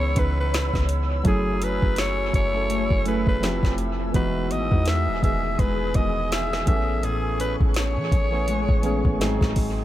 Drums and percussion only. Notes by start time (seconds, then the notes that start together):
0.16 kick, closed hi-hat
0.54 snare, closed hi-hat
0.74 kick, snare
0.89 closed hi-hat
1.25 kick, closed hi-hat
1.62 closed hi-hat
1.82 kick
1.96 snare, closed hi-hat
2.34 kick, closed hi-hat
2.70 closed hi-hat
2.91 kick
3.06 closed hi-hat
3.27 kick
3.43 snare, closed hi-hat
3.63 kick, snare
3.78 closed hi-hat
4.14 kick, closed hi-hat
4.51 closed hi-hat
4.72 kick
4.86 snare, closed hi-hat
5.23 kick, closed hi-hat
5.59 kick, closed hi-hat
5.94 kick, closed hi-hat
6.32 snare, closed hi-hat
6.53 snare
6.67 kick, closed hi-hat
7.03 closed hi-hat
7.40 closed hi-hat
7.61 kick
7.74 snare, closed hi-hat
8.12 kick, closed hi-hat
8.48 closed hi-hat
8.69 kick
8.83 closed hi-hat
9.05 kick
9.21 snare, closed hi-hat
9.41 kick, snare
9.56 kick, open hi-hat